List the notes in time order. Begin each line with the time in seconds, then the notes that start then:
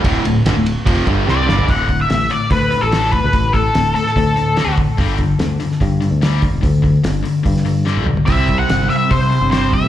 0.03 D1 D2 A2 D3, kick, ride
0.25 D1 D2 A2, ride
0.46 G1 G2 D3, snare, ride
0.56 D1 D2 A2
0.66 ride
0.86 F1 F2 C3 F3, kick, ride
1.06 G1 G2 D3 G3, kick, ride
1.25 C2 C3 G3 C4, snare
1.30 D5
1.46 G1 G2 D3 G3, snare
1.59 floor tom
1.68 D1 D2 A2 D3 F#5, kick, open hi-hat
1.89 D2 A2, kick, open hi-hat
2.01 E5
2.09 A1 D2 A2, snare, open hi-hat
2.29 D2 A2 D5, open hi-hat
2.51 D2 A2 B4, kick, open hi-hat
2.70 D2 A2, open hi-hat
2.81 A1 A4
2.91 D2 A2 D3, snare, open hi-hat
3.12 D2 A2 B4, kick, open hi-hat
3.24 C#2
3.33 A1 D2 A2, kick, open hi-hat
3.53 D2 A2 A4, kick, open hi-hat
3.74 D1 D2 A2, snare, open hi-hat
3.95 D2 A2 A4, open hi-hat
4.07 snare
4.16 D2 A2, kick, open hi-hat
4.36 D2 A2, open hi-hat
4.56 D2 A2 D3, snare, open hi-hat
4.67 D2
4.77 D2 A2, kick, open hi-hat
4.97 G1 G2 D3 G3, kick, open hi-hat
5.18 G2 D3, kick, open hi-hat
5.39 D2 G2 D3, snare, open hi-hat
5.60 G2 D3, open hi-hat
5.72 snare
5.80 G2 D3, kick, open hi-hat
6.01 G2 D3, open hi-hat
6.11 D2
6.21 G2 D3 G3, snare, open hi-hat
6.42 G2 D3, kick, open hi-hat
6.54 E1
6.61 D2 G2 D3, kick, open hi-hat
6.82 G2 D3, kick, open hi-hat
7.04 G1 G2 D3, snare, open hi-hat
7.23 G2 D3, open hi-hat
7.43 G2 D3, kick, open hi-hat
7.57 snare
7.65 G2 D3, open hi-hat
7.85 G2 D3 G3, snare
7.97 B1
8.06 G2 D3, mid tom
8.17 floor tom
8.26 C2 C3 G3 C4 E5, kick, open hi-hat
8.48 C3 G3, kick, open hi-hat
8.59 F#5
8.68 G1 C3 G3, snare, open hi-hat
8.89 C3 G3 E5, open hi-hat
9.09 C3 G3 C5, kick, open hi-hat
9.30 C3 G3, open hi-hat
9.41 G1
9.51 C3 G3 C4 C5, snare, open hi-hat
9.72 C3 G3 E5, kick, open hi-hat
9.83 A1